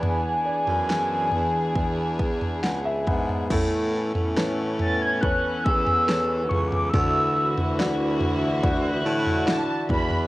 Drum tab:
CC |----------------|x---------------|----------------|
SD |----o-------o---|----o-------o---|----o-------o---|
FT |o--o--o-o--o--oo|o--o--o-o--o--oo|o--o--o-o--o--oo|
BD |--------o-o---o-|o-------o-o-----|o-------o-----o-|